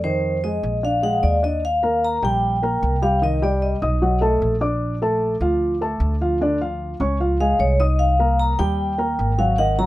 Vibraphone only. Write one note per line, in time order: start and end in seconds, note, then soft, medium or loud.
0.04 0.41 C5 medium
0.44 0.81 D#5 medium
0.85 1.40 F5 medium
1.03 1.24 F#5 medium
1.23 1.41 D5 medium
1.44 1.62 D#5 medium
1.65 2.05 F5 loud
2.04 2.24 A#5 loud
2.25 2.99 G5 medium
3.03 3.23 F5 medium
3.24 3.43 D#5 medium
3.44 3.63 D5 medium
3.62 4.37 D#5 medium
7.41 7.61 F5 medium
7.60 7.80 C#5 medium
7.80 8.00 D#5 medium
7.99 8.36 F5 medium
8.39 8.48 A#5 loud
8.59 9.41 G5 loud
9.39 9.57 F5 medium
9.58 9.77 F#5 loud
9.79 9.86 A#5 medium